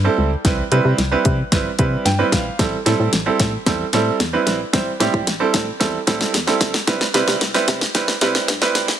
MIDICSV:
0, 0, Header, 1, 4, 480
1, 0, Start_track
1, 0, Key_signature, 0, "minor"
1, 0, Tempo, 535714
1, 402, Time_signature, 4, 2, 24, 8
1, 8063, End_track
2, 0, Start_track
2, 0, Title_t, "Grand piano"
2, 0, Program_c, 0, 0
2, 39, Note_on_c, 0, 55, 82
2, 41, Note_on_c, 0, 60, 76
2, 43, Note_on_c, 0, 64, 76
2, 45, Note_on_c, 0, 69, 94
2, 258, Note_off_c, 0, 55, 0
2, 260, Note_off_c, 0, 60, 0
2, 261, Note_off_c, 0, 64, 0
2, 261, Note_off_c, 0, 69, 0
2, 400, Note_on_c, 0, 55, 83
2, 402, Note_on_c, 0, 60, 74
2, 404, Note_on_c, 0, 64, 78
2, 405, Note_on_c, 0, 71, 91
2, 546, Note_off_c, 0, 55, 0
2, 548, Note_off_c, 0, 60, 0
2, 548, Note_off_c, 0, 64, 0
2, 549, Note_off_c, 0, 71, 0
2, 641, Note_on_c, 0, 55, 85
2, 643, Note_on_c, 0, 60, 82
2, 644, Note_on_c, 0, 64, 76
2, 645, Note_on_c, 0, 71, 98
2, 859, Note_off_c, 0, 55, 0
2, 861, Note_off_c, 0, 60, 0
2, 861, Note_off_c, 0, 64, 0
2, 862, Note_off_c, 0, 71, 0
2, 999, Note_on_c, 0, 55, 86
2, 1001, Note_on_c, 0, 60, 76
2, 1003, Note_on_c, 0, 64, 76
2, 1005, Note_on_c, 0, 71, 93
2, 1218, Note_off_c, 0, 55, 0
2, 1219, Note_off_c, 0, 60, 0
2, 1220, Note_off_c, 0, 64, 0
2, 1221, Note_off_c, 0, 71, 0
2, 1361, Note_on_c, 0, 55, 83
2, 1362, Note_on_c, 0, 60, 75
2, 1365, Note_on_c, 0, 64, 76
2, 1366, Note_on_c, 0, 71, 91
2, 1507, Note_off_c, 0, 55, 0
2, 1508, Note_off_c, 0, 60, 0
2, 1509, Note_off_c, 0, 64, 0
2, 1510, Note_off_c, 0, 71, 0
2, 1601, Note_on_c, 0, 55, 81
2, 1602, Note_on_c, 0, 60, 73
2, 1603, Note_on_c, 0, 64, 72
2, 1603, Note_on_c, 0, 83, 71
2, 1605, Note_on_c, 0, 71, 91
2, 1820, Note_off_c, 0, 55, 0
2, 1820, Note_off_c, 0, 60, 0
2, 1820, Note_off_c, 0, 64, 0
2, 1821, Note_off_c, 0, 71, 0
2, 1826, Note_off_c, 0, 83, 0
2, 1840, Note_on_c, 0, 79, 79
2, 1959, Note_on_c, 0, 55, 79
2, 1961, Note_on_c, 0, 60, 73
2, 1962, Note_on_c, 0, 64, 76
2, 1964, Note_on_c, 0, 71, 90
2, 2064, Note_off_c, 0, 79, 0
2, 2082, Note_on_c, 0, 77, 74
2, 2179, Note_off_c, 0, 55, 0
2, 2180, Note_off_c, 0, 60, 0
2, 2180, Note_off_c, 0, 64, 0
2, 2181, Note_off_c, 0, 71, 0
2, 2305, Note_off_c, 0, 77, 0
2, 2321, Note_on_c, 0, 55, 85
2, 2323, Note_on_c, 0, 60, 74
2, 2324, Note_on_c, 0, 64, 77
2, 2326, Note_on_c, 0, 69, 95
2, 2467, Note_off_c, 0, 55, 0
2, 2468, Note_off_c, 0, 60, 0
2, 2469, Note_off_c, 0, 64, 0
2, 2470, Note_off_c, 0, 69, 0
2, 2560, Note_on_c, 0, 55, 83
2, 2561, Note_on_c, 0, 60, 77
2, 2563, Note_on_c, 0, 64, 76
2, 2564, Note_on_c, 0, 69, 95
2, 2779, Note_off_c, 0, 55, 0
2, 2779, Note_off_c, 0, 60, 0
2, 2780, Note_off_c, 0, 64, 0
2, 2781, Note_off_c, 0, 69, 0
2, 2921, Note_on_c, 0, 55, 85
2, 2924, Note_on_c, 0, 60, 80
2, 2925, Note_on_c, 0, 64, 77
2, 2926, Note_on_c, 0, 69, 94
2, 3140, Note_off_c, 0, 55, 0
2, 3141, Note_off_c, 0, 60, 0
2, 3141, Note_off_c, 0, 64, 0
2, 3142, Note_off_c, 0, 69, 0
2, 3284, Note_on_c, 0, 55, 83
2, 3285, Note_on_c, 0, 60, 76
2, 3287, Note_on_c, 0, 64, 79
2, 3288, Note_on_c, 0, 69, 94
2, 3428, Note_off_c, 0, 55, 0
2, 3429, Note_off_c, 0, 60, 0
2, 3430, Note_off_c, 0, 64, 0
2, 3431, Note_off_c, 0, 69, 0
2, 3524, Note_on_c, 0, 55, 84
2, 3526, Note_on_c, 0, 60, 77
2, 3526, Note_on_c, 0, 64, 75
2, 3528, Note_on_c, 0, 69, 94
2, 3741, Note_off_c, 0, 55, 0
2, 3742, Note_off_c, 0, 60, 0
2, 3742, Note_off_c, 0, 64, 0
2, 3743, Note_off_c, 0, 69, 0
2, 3880, Note_on_c, 0, 55, 81
2, 3883, Note_on_c, 0, 60, 76
2, 3884, Note_on_c, 0, 64, 76
2, 3886, Note_on_c, 0, 71, 93
2, 4099, Note_off_c, 0, 55, 0
2, 4100, Note_off_c, 0, 60, 0
2, 4101, Note_off_c, 0, 64, 0
2, 4102, Note_off_c, 0, 71, 0
2, 4238, Note_on_c, 0, 55, 85
2, 4239, Note_on_c, 0, 60, 80
2, 4241, Note_on_c, 0, 64, 77
2, 4243, Note_on_c, 0, 72, 93
2, 4386, Note_off_c, 0, 55, 0
2, 4386, Note_off_c, 0, 60, 0
2, 4387, Note_off_c, 0, 64, 0
2, 4388, Note_off_c, 0, 72, 0
2, 4478, Note_on_c, 0, 55, 87
2, 4480, Note_on_c, 0, 60, 80
2, 4483, Note_on_c, 0, 64, 76
2, 4483, Note_on_c, 0, 67, 96
2, 4698, Note_off_c, 0, 55, 0
2, 4699, Note_off_c, 0, 60, 0
2, 4700, Note_off_c, 0, 64, 0
2, 4700, Note_off_c, 0, 67, 0
2, 4838, Note_on_c, 0, 55, 86
2, 4839, Note_on_c, 0, 60, 79
2, 4841, Note_on_c, 0, 64, 78
2, 4841, Note_on_c, 0, 69, 99
2, 5058, Note_off_c, 0, 55, 0
2, 5058, Note_off_c, 0, 60, 0
2, 5059, Note_off_c, 0, 64, 0
2, 5059, Note_off_c, 0, 69, 0
2, 5194, Note_on_c, 0, 55, 82
2, 5197, Note_on_c, 0, 60, 77
2, 5199, Note_on_c, 0, 64, 81
2, 5200, Note_on_c, 0, 69, 99
2, 5344, Note_off_c, 0, 55, 0
2, 5345, Note_off_c, 0, 60, 0
2, 5346, Note_off_c, 0, 64, 0
2, 5346, Note_off_c, 0, 69, 0
2, 5438, Note_on_c, 0, 55, 86
2, 5439, Note_on_c, 0, 60, 77
2, 5441, Note_on_c, 0, 64, 80
2, 5441, Note_on_c, 0, 69, 97
2, 5658, Note_off_c, 0, 55, 0
2, 5658, Note_off_c, 0, 60, 0
2, 5659, Note_off_c, 0, 69, 0
2, 5660, Note_off_c, 0, 64, 0
2, 5798, Note_on_c, 0, 55, 82
2, 5798, Note_on_c, 0, 60, 79
2, 5800, Note_on_c, 0, 64, 80
2, 5802, Note_on_c, 0, 69, 94
2, 6018, Note_off_c, 0, 55, 0
2, 6018, Note_off_c, 0, 60, 0
2, 6019, Note_off_c, 0, 64, 0
2, 6020, Note_off_c, 0, 69, 0
2, 6157, Note_on_c, 0, 55, 88
2, 6159, Note_on_c, 0, 60, 78
2, 6160, Note_on_c, 0, 64, 78
2, 6162, Note_on_c, 0, 71, 94
2, 6305, Note_off_c, 0, 55, 0
2, 6306, Note_off_c, 0, 60, 0
2, 6307, Note_off_c, 0, 64, 0
2, 6308, Note_off_c, 0, 71, 0
2, 6397, Note_on_c, 0, 55, 91
2, 6399, Note_on_c, 0, 60, 81
2, 6400, Note_on_c, 0, 64, 82
2, 6401, Note_on_c, 0, 71, 99
2, 6617, Note_off_c, 0, 55, 0
2, 6618, Note_off_c, 0, 60, 0
2, 6619, Note_off_c, 0, 64, 0
2, 6619, Note_off_c, 0, 71, 0
2, 6759, Note_on_c, 0, 55, 90
2, 6761, Note_on_c, 0, 60, 81
2, 6762, Note_on_c, 0, 64, 81
2, 6763, Note_on_c, 0, 71, 94
2, 6978, Note_off_c, 0, 55, 0
2, 6979, Note_off_c, 0, 60, 0
2, 6980, Note_off_c, 0, 64, 0
2, 6980, Note_off_c, 0, 71, 0
2, 7120, Note_on_c, 0, 55, 88
2, 7121, Note_on_c, 0, 60, 77
2, 7122, Note_on_c, 0, 64, 82
2, 7124, Note_on_c, 0, 71, 94
2, 7266, Note_off_c, 0, 55, 0
2, 7267, Note_off_c, 0, 60, 0
2, 7268, Note_off_c, 0, 64, 0
2, 7268, Note_off_c, 0, 71, 0
2, 7361, Note_on_c, 0, 60, 77
2, 7362, Note_on_c, 0, 55, 87
2, 7363, Note_on_c, 0, 64, 80
2, 7364, Note_on_c, 0, 71, 93
2, 7580, Note_off_c, 0, 55, 0
2, 7580, Note_off_c, 0, 60, 0
2, 7580, Note_off_c, 0, 64, 0
2, 7581, Note_off_c, 0, 71, 0
2, 7720, Note_on_c, 0, 55, 88
2, 7722, Note_on_c, 0, 60, 78
2, 7723, Note_on_c, 0, 64, 82
2, 7726, Note_on_c, 0, 71, 98
2, 7939, Note_off_c, 0, 55, 0
2, 7940, Note_off_c, 0, 60, 0
2, 7940, Note_off_c, 0, 64, 0
2, 7942, Note_off_c, 0, 71, 0
2, 8063, End_track
3, 0, Start_track
3, 0, Title_t, "FM bass"
3, 0, Program_c, 1, 39
3, 161, Note_on_c, 1, 37, 91
3, 318, Note_off_c, 1, 37, 0
3, 401, Note_on_c, 1, 36, 115
3, 558, Note_off_c, 1, 36, 0
3, 642, Note_on_c, 1, 48, 99
3, 720, Note_off_c, 1, 48, 0
3, 761, Note_on_c, 1, 48, 89
3, 840, Note_off_c, 1, 48, 0
3, 879, Note_on_c, 1, 36, 98
3, 1036, Note_off_c, 1, 36, 0
3, 1123, Note_on_c, 1, 48, 98
3, 1279, Note_off_c, 1, 48, 0
3, 1363, Note_on_c, 1, 31, 98
3, 1519, Note_off_c, 1, 31, 0
3, 1604, Note_on_c, 1, 48, 100
3, 1760, Note_off_c, 1, 48, 0
3, 1839, Note_on_c, 1, 43, 94
3, 1996, Note_off_c, 1, 43, 0
3, 2082, Note_on_c, 1, 34, 101
3, 2238, Note_off_c, 1, 34, 0
3, 2322, Note_on_c, 1, 33, 112
3, 2478, Note_off_c, 1, 33, 0
3, 2563, Note_on_c, 1, 45, 99
3, 2641, Note_off_c, 1, 45, 0
3, 2685, Note_on_c, 1, 45, 93
3, 2762, Note_off_c, 1, 45, 0
3, 2804, Note_on_c, 1, 33, 104
3, 2959, Note_off_c, 1, 33, 0
3, 3044, Note_on_c, 1, 45, 97
3, 3199, Note_off_c, 1, 45, 0
3, 3283, Note_on_c, 1, 40, 93
3, 3439, Note_off_c, 1, 40, 0
3, 3523, Note_on_c, 1, 45, 94
3, 3679, Note_off_c, 1, 45, 0
3, 3763, Note_on_c, 1, 40, 88
3, 3919, Note_off_c, 1, 40, 0
3, 4003, Note_on_c, 1, 34, 88
3, 4159, Note_off_c, 1, 34, 0
3, 4242, Note_on_c, 1, 33, 114
3, 4398, Note_off_c, 1, 33, 0
3, 4483, Note_on_c, 1, 45, 101
3, 4561, Note_off_c, 1, 45, 0
3, 4603, Note_on_c, 1, 45, 96
3, 4681, Note_off_c, 1, 45, 0
3, 4725, Note_on_c, 1, 33, 100
3, 4880, Note_off_c, 1, 33, 0
3, 4966, Note_on_c, 1, 45, 100
3, 5121, Note_off_c, 1, 45, 0
3, 5203, Note_on_c, 1, 40, 105
3, 5359, Note_off_c, 1, 40, 0
3, 5444, Note_on_c, 1, 45, 102
3, 5599, Note_off_c, 1, 45, 0
3, 5682, Note_on_c, 1, 40, 95
3, 5838, Note_off_c, 1, 40, 0
3, 5920, Note_on_c, 1, 37, 93
3, 6077, Note_off_c, 1, 37, 0
3, 6161, Note_on_c, 1, 36, 112
3, 6318, Note_off_c, 1, 36, 0
3, 6401, Note_on_c, 1, 48, 103
3, 6479, Note_off_c, 1, 48, 0
3, 6522, Note_on_c, 1, 48, 93
3, 6600, Note_off_c, 1, 48, 0
3, 6642, Note_on_c, 1, 36, 99
3, 6798, Note_off_c, 1, 36, 0
3, 6883, Note_on_c, 1, 48, 101
3, 7039, Note_off_c, 1, 48, 0
3, 7122, Note_on_c, 1, 31, 102
3, 7278, Note_off_c, 1, 31, 0
3, 7363, Note_on_c, 1, 48, 100
3, 7519, Note_off_c, 1, 48, 0
3, 7602, Note_on_c, 1, 43, 103
3, 7758, Note_off_c, 1, 43, 0
3, 7843, Note_on_c, 1, 37, 98
3, 7999, Note_off_c, 1, 37, 0
3, 8063, End_track
4, 0, Start_track
4, 0, Title_t, "Drums"
4, 401, Note_on_c, 9, 36, 121
4, 401, Note_on_c, 9, 38, 76
4, 401, Note_on_c, 9, 42, 91
4, 490, Note_off_c, 9, 38, 0
4, 490, Note_off_c, 9, 42, 0
4, 491, Note_off_c, 9, 36, 0
4, 642, Note_on_c, 9, 42, 78
4, 731, Note_off_c, 9, 42, 0
4, 882, Note_on_c, 9, 38, 72
4, 882, Note_on_c, 9, 42, 92
4, 972, Note_off_c, 9, 38, 0
4, 972, Note_off_c, 9, 42, 0
4, 1120, Note_on_c, 9, 42, 76
4, 1124, Note_on_c, 9, 36, 92
4, 1210, Note_off_c, 9, 42, 0
4, 1213, Note_off_c, 9, 36, 0
4, 1362, Note_on_c, 9, 36, 94
4, 1362, Note_on_c, 9, 38, 80
4, 1362, Note_on_c, 9, 42, 82
4, 1451, Note_off_c, 9, 38, 0
4, 1451, Note_off_c, 9, 42, 0
4, 1452, Note_off_c, 9, 36, 0
4, 1600, Note_on_c, 9, 42, 86
4, 1603, Note_on_c, 9, 36, 89
4, 1690, Note_off_c, 9, 42, 0
4, 1693, Note_off_c, 9, 36, 0
4, 1842, Note_on_c, 9, 38, 84
4, 1843, Note_on_c, 9, 42, 70
4, 1932, Note_off_c, 9, 38, 0
4, 1933, Note_off_c, 9, 42, 0
4, 2082, Note_on_c, 9, 36, 95
4, 2082, Note_on_c, 9, 38, 83
4, 2085, Note_on_c, 9, 42, 76
4, 2171, Note_off_c, 9, 36, 0
4, 2172, Note_off_c, 9, 38, 0
4, 2175, Note_off_c, 9, 42, 0
4, 2323, Note_on_c, 9, 36, 119
4, 2323, Note_on_c, 9, 38, 85
4, 2323, Note_on_c, 9, 42, 90
4, 2412, Note_off_c, 9, 36, 0
4, 2413, Note_off_c, 9, 38, 0
4, 2413, Note_off_c, 9, 42, 0
4, 2564, Note_on_c, 9, 38, 85
4, 2564, Note_on_c, 9, 42, 77
4, 2653, Note_off_c, 9, 38, 0
4, 2654, Note_off_c, 9, 42, 0
4, 2802, Note_on_c, 9, 38, 84
4, 2802, Note_on_c, 9, 42, 92
4, 2892, Note_off_c, 9, 38, 0
4, 2892, Note_off_c, 9, 42, 0
4, 3042, Note_on_c, 9, 42, 77
4, 3044, Note_on_c, 9, 38, 88
4, 3045, Note_on_c, 9, 36, 90
4, 3132, Note_off_c, 9, 42, 0
4, 3133, Note_off_c, 9, 38, 0
4, 3134, Note_off_c, 9, 36, 0
4, 3283, Note_on_c, 9, 38, 89
4, 3283, Note_on_c, 9, 42, 86
4, 3284, Note_on_c, 9, 36, 90
4, 3373, Note_off_c, 9, 36, 0
4, 3373, Note_off_c, 9, 38, 0
4, 3373, Note_off_c, 9, 42, 0
4, 3521, Note_on_c, 9, 42, 87
4, 3523, Note_on_c, 9, 38, 89
4, 3611, Note_off_c, 9, 42, 0
4, 3612, Note_off_c, 9, 38, 0
4, 3763, Note_on_c, 9, 38, 93
4, 3765, Note_on_c, 9, 42, 76
4, 3853, Note_off_c, 9, 38, 0
4, 3854, Note_off_c, 9, 42, 0
4, 4002, Note_on_c, 9, 38, 97
4, 4004, Note_on_c, 9, 42, 76
4, 4091, Note_off_c, 9, 38, 0
4, 4094, Note_off_c, 9, 42, 0
4, 4242, Note_on_c, 9, 38, 98
4, 4242, Note_on_c, 9, 42, 95
4, 4243, Note_on_c, 9, 36, 123
4, 4332, Note_off_c, 9, 36, 0
4, 4332, Note_off_c, 9, 38, 0
4, 4332, Note_off_c, 9, 42, 0
4, 4484, Note_on_c, 9, 38, 96
4, 4484, Note_on_c, 9, 42, 80
4, 4573, Note_off_c, 9, 38, 0
4, 4574, Note_off_c, 9, 42, 0
4, 4604, Note_on_c, 9, 36, 89
4, 4693, Note_off_c, 9, 36, 0
4, 4724, Note_on_c, 9, 38, 93
4, 4724, Note_on_c, 9, 42, 90
4, 4813, Note_off_c, 9, 38, 0
4, 4813, Note_off_c, 9, 42, 0
4, 4962, Note_on_c, 9, 42, 75
4, 4963, Note_on_c, 9, 38, 98
4, 4964, Note_on_c, 9, 36, 92
4, 5051, Note_off_c, 9, 42, 0
4, 5053, Note_off_c, 9, 38, 0
4, 5054, Note_off_c, 9, 36, 0
4, 5202, Note_on_c, 9, 38, 98
4, 5202, Note_on_c, 9, 42, 86
4, 5203, Note_on_c, 9, 36, 96
4, 5292, Note_off_c, 9, 36, 0
4, 5292, Note_off_c, 9, 38, 0
4, 5292, Note_off_c, 9, 42, 0
4, 5441, Note_on_c, 9, 42, 91
4, 5442, Note_on_c, 9, 38, 100
4, 5443, Note_on_c, 9, 36, 95
4, 5530, Note_off_c, 9, 42, 0
4, 5532, Note_off_c, 9, 38, 0
4, 5533, Note_off_c, 9, 36, 0
4, 5562, Note_on_c, 9, 38, 101
4, 5651, Note_off_c, 9, 38, 0
4, 5681, Note_on_c, 9, 38, 107
4, 5683, Note_on_c, 9, 42, 74
4, 5771, Note_off_c, 9, 38, 0
4, 5772, Note_off_c, 9, 42, 0
4, 5801, Note_on_c, 9, 38, 100
4, 5891, Note_off_c, 9, 38, 0
4, 5919, Note_on_c, 9, 38, 101
4, 5920, Note_on_c, 9, 36, 94
4, 5922, Note_on_c, 9, 42, 77
4, 6009, Note_off_c, 9, 38, 0
4, 6010, Note_off_c, 9, 36, 0
4, 6012, Note_off_c, 9, 42, 0
4, 6040, Note_on_c, 9, 38, 105
4, 6129, Note_off_c, 9, 38, 0
4, 6160, Note_on_c, 9, 38, 102
4, 6160, Note_on_c, 9, 42, 98
4, 6161, Note_on_c, 9, 36, 123
4, 6249, Note_off_c, 9, 38, 0
4, 6249, Note_off_c, 9, 42, 0
4, 6250, Note_off_c, 9, 36, 0
4, 6280, Note_on_c, 9, 38, 105
4, 6370, Note_off_c, 9, 38, 0
4, 6400, Note_on_c, 9, 38, 107
4, 6400, Note_on_c, 9, 42, 79
4, 6489, Note_off_c, 9, 38, 0
4, 6490, Note_off_c, 9, 42, 0
4, 6519, Note_on_c, 9, 38, 108
4, 6609, Note_off_c, 9, 38, 0
4, 6640, Note_on_c, 9, 38, 105
4, 6640, Note_on_c, 9, 42, 92
4, 6730, Note_off_c, 9, 38, 0
4, 6730, Note_off_c, 9, 42, 0
4, 6760, Note_on_c, 9, 38, 103
4, 6850, Note_off_c, 9, 38, 0
4, 6879, Note_on_c, 9, 42, 77
4, 6881, Note_on_c, 9, 38, 110
4, 6883, Note_on_c, 9, 36, 92
4, 6969, Note_off_c, 9, 42, 0
4, 6970, Note_off_c, 9, 38, 0
4, 6973, Note_off_c, 9, 36, 0
4, 7001, Note_on_c, 9, 38, 109
4, 7091, Note_off_c, 9, 38, 0
4, 7121, Note_on_c, 9, 38, 103
4, 7121, Note_on_c, 9, 42, 86
4, 7122, Note_on_c, 9, 36, 97
4, 7210, Note_off_c, 9, 38, 0
4, 7211, Note_off_c, 9, 36, 0
4, 7211, Note_off_c, 9, 42, 0
4, 7240, Note_on_c, 9, 38, 109
4, 7330, Note_off_c, 9, 38, 0
4, 7359, Note_on_c, 9, 42, 89
4, 7360, Note_on_c, 9, 38, 110
4, 7448, Note_off_c, 9, 42, 0
4, 7450, Note_off_c, 9, 38, 0
4, 7481, Note_on_c, 9, 38, 111
4, 7570, Note_off_c, 9, 38, 0
4, 7601, Note_on_c, 9, 38, 115
4, 7602, Note_on_c, 9, 42, 76
4, 7690, Note_off_c, 9, 38, 0
4, 7692, Note_off_c, 9, 42, 0
4, 7720, Note_on_c, 9, 38, 115
4, 7810, Note_off_c, 9, 38, 0
4, 7840, Note_on_c, 9, 38, 110
4, 7843, Note_on_c, 9, 42, 77
4, 7930, Note_off_c, 9, 38, 0
4, 7932, Note_off_c, 9, 42, 0
4, 7959, Note_on_c, 9, 38, 106
4, 8049, Note_off_c, 9, 38, 0
4, 8063, End_track
0, 0, End_of_file